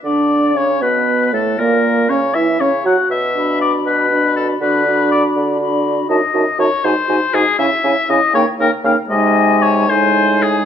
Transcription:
X:1
M:6/8
L:1/8
Q:3/8=80
K:Bm
V:1 name="Flute"
d2 c B2 A | ^A2 c e c f | z b3 b2 | b b3 b2 |
[K:G#phr] a a a g g g | g g g =g g g | g3 g3 |]
V:2 name="Oboe"
d2 c B2 A | ^A2 c e c f | e2 d B2 A | B2 d z3 |
[K:G#phr] d2 c ^B2 G | e2 d c ^A ^e | d2 c ^B2 G |]
V:3 name="Clarinet"
D2 C B,2 A, | ^A,2 C E C F | z F3 F2 | F F3 F2 |
[K:G#phr] F F F F F F | E E E D D D | D3 D3 |]
V:4 name="French horn"
D2 C B,2 A, | ^A,2 C E C F | z D3 D2 | D D3 D2 |
[K:G#phr] D D D D D D | C C C ^A, A, A, | G,3 G,3 |]
V:5 name="Bassoon" clef=bass
D,2 C, B,,2 A,, | ^A,,2 C, E, C, F, | B,,3 B,,3 | D,3 D,3 |
[K:G#phr] F,, F,, F,, G,, G,, G,, | C, C, C, C, C, C, | ^B,,3 A,,3 |]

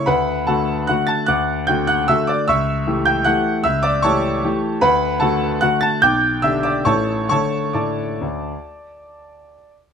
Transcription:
X:1
M:3/4
L:1/8
Q:1/4=148
K:D
V:1 name="Grand piano"
[Bfb]2 [Afa]2 [ff'] [aa'] | [fd'f']2 [gg'] [ff'] [ee'] [dd'] | [ec'e']3 [gg'] [ff']2 | [ee'] [dd'] [cac']4 |
[Bfb]2 [Afa]2 [ff'] [aa'] | [gd'g']2 [ee'] [dd'] [cac']2 | [cac']2 [dad']4- | [dad']4- [dad'] z |]
V:2 name="Grand piano"
D,,2 [D,A,F]2 [D,A,F]2 | D,,2 [D,A,F]2 [D,A,F]2 | C,,2 [E,A,G]2 [E,A,G]2 | C,,2 [E,A,G]2 [E,A,G]2 |
D,,2 [D,A,F]2 [D,A,F]2 | B,,,2 [D,DG]2 [A,,,E,A,A]2 | [D,A,A]2 A,,2 D,,2 | z6 |]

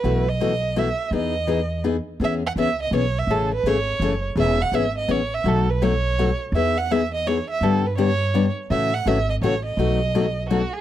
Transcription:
X:1
M:3/4
L:1/16
Q:"Swing" 1/4=166
K:E
V:1 name="Violin"
B2 d6 e4 | d8 z4 | e2 f2 e2 d2 c2 e2 | A2 B2 c6 z2 |
e2 f2 e2 d2 c2 e2 | A2 B2 c6 z2 | e2 f2 e2 d2 c2 e2 | A2 B2 c6 z2 |
e2 f2 e2 d2 c2 d2- | d8 F2 G2 |]
V:2 name="Steel-string acoustic guitar"
[B,,E,A,EF]2 z2 [B,,E,A,EF] z3 [B,,E,A,EF] z3 | [E,B,DG]2 z2 [E,B,DG] z3 [E,B,DG] z3 | [E,B,CG]2 z2 [E,B,CG] z3 [E,B,CG] z3 | [C,E,A,CG]2 z2 [C,E,A,CG] z3 [C,E,A,CG] z3 |
[E,B,CG]2 z2 [E,B,CG] z3 [E,B,CG] z3 | [B,,F,A,DF]2 z2 [B,,F,A,DF] z3 [B,,F,A,DF] z3 | [E,B,DG]2 z2 [E,B,DG] z3 [E,B,DG] z3 | [=D,=G,B,=D=G]2 z2 [D,G,B,DG] z3 [D,G,B,DG] z3 |
[C,E,A,CF]2 z2 [C,E,A,CF] z3 [C,E,A,CF] z3 | [B,,F,A,DF]2 z2 [B,,F,A,DF] z3 [B,,F,A,DF] z3 |]
V:3 name="Upright bass" clef=bass
B,,,12 | E,,12 | E,,4 C,,4 B,,,4 | A,,,4 G,,,4 F,,,4 |
E,,,4 G,,,4 A,,,4 | B,,,12 | E,,12 | =G,,12 |
A,,4 G,,,4 A,,,4 | B,,,12 |]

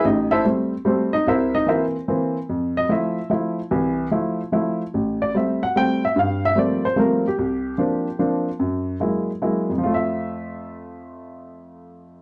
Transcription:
X:1
M:3/4
L:1/8
Q:"Swing" 1/4=147
K:F
V:1 name="Grand piano"
[_E_e] [=EAc=e] z2 [GAc] [_E_e] | [EBce] [_E_e] [=EBc=e] z3 | z _e =e2 z2 | z6 |
z d e _g =g e | f e d c B G- | G4 z2 | z6 |
[F,,F,A,Fe]6- | [F,,F,A,Fe]6 |]
V:2 name="Grand piano"
A,,,2 [G,A,C] z [G,A,C] z | C,,2 [E,B,C] z [E,B,C] z | F,,2 [F,A,E] z [F,A,E] z | [C,,E,]2 [F,A,E] z [F,A,E] z |
A,,,2 [G,A,C] z [G,A,C] z | G,,2 [F,G,A,B,C] z [F,G,A,B,C] z | C,,2 [F,B,CD] z [F,B,CD] z | _G,,2 [_G,_A,B,_F] z [G,A,B,F] z |
z6 | z6 |]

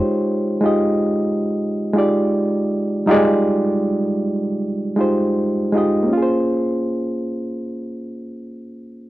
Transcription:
X:1
M:4/4
L:1/16
Q:"Swing 16ths" 1/4=79
K:Bbdor
V:1 name="Reed electric piano"
[A,EFGc]3 [A,EFGe]6 z [A,EFG=d]4- [A,EFGd] z | [G,A,EFG=d]6- [G,A,EFGd] z3 [A,EFGc]4 [A,EFGe]2 | [B,DFAc]16 |]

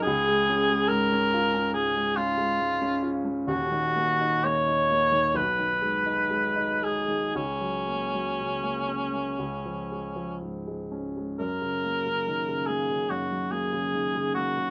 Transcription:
X:1
M:4/4
L:1/16
Q:1/4=67
K:F#
V:1 name="Cor anglais"
G4 A4 G2 E4 z2 | F4 c4 B6 G2 | C12 z4 | A6 G2 F2 G4 F2 |]
V:2 name="Grand piano" clef=bass
C,, G, C G, G,, C E C G,, G, C G, G,, C E C | [D,,,D,,] D, A, D A, D A, D, B,,, D, G, D G, D G, D, | C,, F, A, F, C, A, C A, C,, E, G, E, G,, G, C G, | F,, C, A, C, D, C, A, C, F,, F, A, C, D, C, A, C, |]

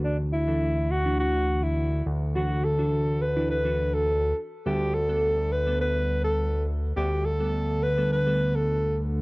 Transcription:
X:1
M:4/4
L:1/16
Q:1/4=104
K:G
V:1 name="Alto saxophone"
D2 E4 F2 F3 E3 z2 | F2 A4 B2 B3 A3 z2 | G2 A4 B2 B3 A3 z2 | G2 A4 B2 B3 A3 z2 |]
V:2 name="Synth keys"
[E,DF]2 z [E,DA]3 z [E,DE]6 z3 | [E,DF]2 z [E,DF]3 z [E,DE] z [E,DF]4- [E,DF] z2 | [G,B,A]2 z [G,B,A]3 z [G,B,A]6 z3 | [G,B,F]2 z [G,B,A]3 z [G,B,A] z [G,B,A]4- [G,B,A] z2 |]
V:3 name="Analog synth bass" clef=bass
D,,12- D,,2 D,,2- | D,,12- D,,2 z2 | D,,16 | D,,16 |]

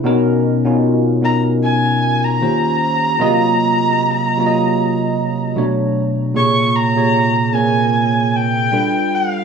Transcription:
X:1
M:4/4
L:1/16
Q:"Swing 16ths" 1/4=76
K:Bbm
V:1 name="Erhu"
z6 ^a2 _a3 ^a4- a- | ^a12 z4 | d'2 b4 a4 =g4 f2 |]
V:2 name="Tine electric piano"
[=B,,=B,^C^D^A]2 z [B,,B,CDF]2 z [B,,B,CDA]6 [E,_B,_DF=G=c]3 z | [C,G,B,Fe]4- [C,G,B,Fe] z [C,G,B,Fde]6 [=B,,^F,=A,=D_d]3 z | [B,,C,B,Ad]2 z [B,,C,B,Ad]2 z [B,,B,CAB]6 [=G,=DF=A=B]3 z |]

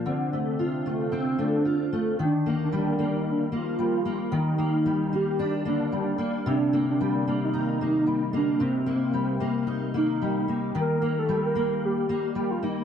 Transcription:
X:1
M:4/4
L:1/16
Q:1/4=112
K:Eblyd
V:1 name="Soft synth lead"
C8- C2 D4 z2 | D3 D D3 E D2 F6 | E6 G2 G2 D4 z2 | D3 D D3 E6- E D2 |
C4 C4 z2 E4 z2 | B3 A2 B3 G4 G F E2 |]
V:2 name="Steel-string acoustic guitar"
D,2 A,2 F2 A,2 C2 A,2 F2 A,2 | E,2 B,2 G,2 B,4 B,2 G,2 B,2 | E,2 B,2 G,2 B,2 D2 B,2 G,2 B,2 | C,2 B,2 G,2 B,2 E2 B,2 G,2 B,2 |
C,2 B,2 G,2 B,2 E2 B,2 G,2 B,2 | E,2 B,2 G,2 B,4 B,2 G,2 B,2 |]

